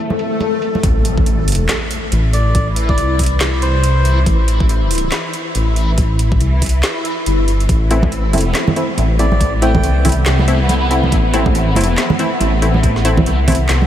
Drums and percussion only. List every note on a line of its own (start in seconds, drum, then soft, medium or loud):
0.10 high conga medium
0.19 closed hi-hat soft
0.40 closed hi-hat medium
0.40 high conga medium
0.62 closed hi-hat soft
0.75 high conga medium
0.83 kick loud
0.83 closed hi-hat medium
1.05 closed hi-hat medium
1.18 kick loud
1.26 closed hi-hat medium
1.48 open hi-hat medium
1.52 closed hi-hat medium
1.55 closed hi-hat medium
1.69 snare loud
1.69 clap medium
1.69 closed hi-hat medium
1.91 closed hi-hat medium
2.12 closed hi-hat medium
2.33 closed hi-hat medium
2.55 kick loud
2.55 closed hi-hat medium
2.76 closed hi-hat medium
2.89 kick loud
2.98 closed hi-hat medium
3.19 kick medium
3.19 open hi-hat medium
3.23 closed hi-hat medium
3.26 closed hi-hat medium
3.41 snare loud
3.41 clap loud
3.41 closed hi-hat medium
3.62 closed hi-hat medium
3.84 closed hi-hat medium
4.05 closed hi-hat medium
4.26 kick loud
4.26 closed hi-hat medium
4.48 closed hi-hat medium
4.60 kick loud
4.69 closed hi-hat medium
4.91 open hi-hat medium
4.95 closed hi-hat medium
4.98 closed hi-hat medium
5.12 snare loud
5.12 clap loud
5.12 closed hi-hat medium
5.33 closed hi-hat medium
5.55 closed hi-hat medium
5.76 closed hi-hat soft
5.98 kick loud
5.98 closed hi-hat medium
6.19 closed hi-hat medium
6.32 kick loud
6.41 closed hi-hat medium
6.62 kick medium
6.62 open hi-hat medium
6.66 closed hi-hat medium
6.69 closed hi-hat medium
6.83 snare loud
6.83 clap medium
6.83 closed hi-hat medium
7.05 closed hi-hat medium
7.26 closed hi-hat medium
7.48 closed hi-hat medium
7.60 closed hi-hat soft
7.69 kick loud
7.69 closed hi-hat medium
7.91 closed hi-hat medium
8.03 kick loud
8.03 high conga loud
8.12 closed hi-hat medium
8.33 open hi-hat medium
8.33 high conga medium
8.38 closed hi-hat medium
8.41 closed hi-hat medium
8.55 snare loud
8.55 clap medium
8.55 closed hi-hat medium
8.68 high conga medium
8.68 low conga medium
8.76 closed hi-hat medium
8.97 closed hi-hat medium
8.97 high conga medium
9.19 closed hi-hat soft
9.32 high conga medium
9.41 kick loud
9.41 closed hi-hat medium
9.62 closed hi-hat medium
9.74 kick loud
9.74 high conga medium
9.74 low conga medium
9.84 closed hi-hat medium
10.05 kick medium
10.05 open hi-hat loud
10.05 low conga medium
10.09 closed hi-hat medium
10.12 closed hi-hat medium
10.26 snare loud
10.26 clap medium
10.26 closed hi-hat medium
10.39 high conga medium
10.48 closed hi-hat medium
10.69 closed hi-hat medium
10.69 high conga medium
10.91 closed hi-hat medium
11.04 high conga medium
11.12 kick loud
11.12 closed hi-hat medium
11.34 closed hi-hat medium
11.46 kick loud
11.46 high conga loud
11.55 closed hi-hat medium
11.75 open hi-hat loud
11.75 high conga medium
11.81 closed hi-hat medium
11.84 closed hi-hat medium
11.98 snare loud
11.98 clap medium
11.98 closed hi-hat medium
12.10 high conga medium
12.10 low conga medium
12.19 closed hi-hat medium
12.40 closed hi-hat medium
12.40 high conga medium
12.62 closed hi-hat medium
12.74 high conga medium
12.83 kick loud
12.83 closed hi-hat medium
12.96 snare soft
13.05 closed hi-hat medium
13.17 kick loud
13.17 high conga loud
13.17 low conga medium
13.26 closed hi-hat medium
13.48 kick medium
13.48 open hi-hat loud
13.48 low conga medium
13.52 closed hi-hat medium
13.55 closed hi-hat medium
13.69 snare loud
13.69 clap loud
13.69 closed hi-hat medium
13.82 high conga medium